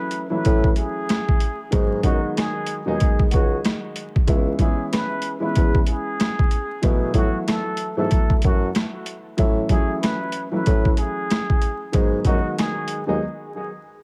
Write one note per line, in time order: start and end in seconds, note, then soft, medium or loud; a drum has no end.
0.00 0.23 E3 medium
0.00 0.24 F#3 medium
0.00 0.24 A3 medium
0.00 0.24 C#4 medium
0.00 0.24 E4 loud
0.00 0.28 B4 medium
0.11 closed hi-hat medium
0.30 1.47 E3 medium
0.30 1.47 F#3 medium
0.30 1.47 A3 medium
0.30 1.48 C#4 medium
0.30 1.48 E4 medium
0.30 0.74 B4 medium
0.45 0.72 A2 medium
0.45 kick loud
0.45 closed hi-hat medium
0.64 kick medium
0.76 1.68 G#4 medium
0.76 closed hi-hat medium
1.09 cross-stick medium
1.09 snare loud
1.09 closed hi-hat medium
1.29 kick medium
1.40 closed hi-hat medium
1.71 1.99 G#2 loud
1.71 2.01 D#3 medium
1.71 2.02 F#3 medium
1.71 2.02 G#3 medium
1.71 2.02 B3 medium
1.71 2.02 D#4 medium
1.71 kick loud
1.71 closed hi-hat medium
2.03 2.19 F#2 medium
2.03 2.78 D#3 loud
2.03 2.79 F#3 medium
2.03 2.79 G#3 medium
2.03 2.79 B3 medium
2.03 2.80 D#4 loud
2.03 2.33 F#4 medium
2.03 kick medium
2.03 closed hi-hat medium
2.37 2.84 G#4 medium
2.37 cross-stick loud
2.37 snare loud
2.37 closed hi-hat loud
2.66 closed hi-hat medium
2.85 2.98 D#2 medium
2.85 4.02 D#3 medium
2.85 4.02 F#3 medium
2.85 4.03 G#3 medium
2.85 4.03 B3 medium
2.85 4.03 D#4 loud
2.85 3.29 G#4 medium
3.00 kick loud
3.00 closed hi-hat medium
3.19 kick medium
3.31 3.60 C#2 medium
3.31 3.60 F#4 medium
3.31 kick medium
3.31 closed hi-hat medium
3.65 cross-stick medium
3.65 snare loud
3.65 closed hi-hat medium
3.96 closed hi-hat medium
4.16 kick medium
4.27 4.54 C#2 loud
4.27 4.57 E3 medium
4.27 4.57 G#3 medium
4.27 4.58 B3 medium
4.27 4.58 C#4 medium
4.27 4.58 E4 loud
4.27 kick loud
4.27 closed hi-hat medium
4.59 5.34 E3 loud
4.59 5.35 G#3 medium
4.59 5.35 B3 medium
4.59 5.35 C#4 medium
4.59 5.35 E4 loud
4.59 4.88 G#4 medium
4.59 kick medium
4.59 closed hi-hat medium
4.92 5.39 B4 medium
4.92 cross-stick loud
4.92 snare loud
4.92 closed hi-hat loud
5.22 closed hi-hat medium
5.40 6.57 E3 medium
5.40 6.57 G#3 medium
5.40 6.58 B3 medium
5.40 6.58 C#4 medium
5.40 6.58 E4 loud
5.40 5.84 B4 medium
5.56 5.82 E2 medium
5.56 kick loud
5.56 closed hi-hat medium
5.75 kick medium
5.87 6.79 G#4 medium
5.87 closed hi-hat medium
6.20 cross-stick medium
6.20 snare loud
6.20 closed hi-hat medium
6.39 kick medium
6.51 closed hi-hat medium
6.82 7.10 B2 loud
6.82 7.11 E3 medium
6.82 7.12 F#3 medium
6.82 7.13 A3 medium
6.82 7.13 B3 medium
6.82 7.13 E4 loud
6.82 kick loud
6.82 closed hi-hat medium
7.13 7.29 A2 medium
7.13 7.89 E3 medium
7.13 7.89 F#3 medium
7.13 7.89 A3 medium
7.13 7.90 B3 medium
7.13 7.90 E4 loud
7.13 7.44 F#4 medium
7.13 kick medium
7.13 closed hi-hat medium
7.46 7.94 A4 medium
7.46 cross-stick loud
7.46 snare loud
7.46 closed hi-hat loud
7.77 closed hi-hat medium
7.97 8.09 G#2 medium
7.97 9.13 E3 loud
7.97 9.13 F#3 medium
7.97 9.14 A3 medium
7.97 9.14 B3 medium
7.97 9.14 E4 medium
7.97 8.40 A4 medium
8.11 kick loud
8.11 closed hi-hat medium
8.30 kick medium
8.42 8.70 F#2 medium
8.42 8.72 F#4 medium
8.42 kick medium
8.42 closed hi-hat medium
8.75 cross-stick medium
8.75 snare loud
8.75 closed hi-hat medium
9.06 closed hi-hat medium
9.37 9.65 A2 loud
9.37 9.67 E3 loud
9.37 9.68 F#3 medium
9.37 9.68 A3 medium
9.37 9.68 C#4 medium
9.37 9.69 E4 loud
9.37 kick loud
9.37 closed hi-hat medium
9.69 10.45 E3 medium
9.69 10.45 F#3 medium
9.69 10.45 A3 medium
9.69 10.45 C#4 medium
9.69 10.46 E4 loud
9.69 9.99 G#4 medium
9.69 kick medium
9.69 closed hi-hat medium
10.02 10.49 B4 medium
10.02 cross-stick loud
10.02 snare loud
10.02 closed hi-hat loud
10.32 closed hi-hat medium
10.51 11.68 E3 loud
10.51 11.68 F#3 medium
10.51 11.69 A3 medium
10.51 11.69 C#4 medium
10.51 11.69 E4 medium
10.51 10.95 B4 medium
10.66 10.93 A2 medium
10.66 kick loud
10.66 closed hi-hat medium
10.85 kick medium
10.97 11.90 G#4 medium
10.97 closed hi-hat medium
11.30 cross-stick medium
11.30 snare loud
11.30 closed hi-hat medium
11.50 kick medium
11.62 closed hi-hat medium
11.92 12.20 G#2 loud
11.92 12.23 D#3 medium
11.92 12.23 F#3 medium
11.92 12.23 G#3 medium
11.92 12.24 B3 medium
11.92 12.24 D#4 medium
11.92 kick loud
11.92 closed hi-hat medium
12.24 12.40 F#2 medium
12.24 13.00 D#3 loud
12.24 13.00 F#3 medium
12.24 13.00 G#3 medium
12.24 13.01 B3 medium
12.24 13.01 D#4 loud
12.24 12.54 F#4 medium
12.24 kick medium
12.24 closed hi-hat medium
12.58 13.05 G#4 medium
12.58 cross-stick loud
12.58 snare loud
12.58 closed hi-hat loud
12.88 closed hi-hat medium
13.07 13.19 D#2 medium
13.07 13.21 D#3 medium
13.07 13.21 F#3 medium
13.07 13.22 G#3 medium
13.07 13.22 B3 medium
13.07 13.22 D#4 loud
13.07 13.20 G#4 medium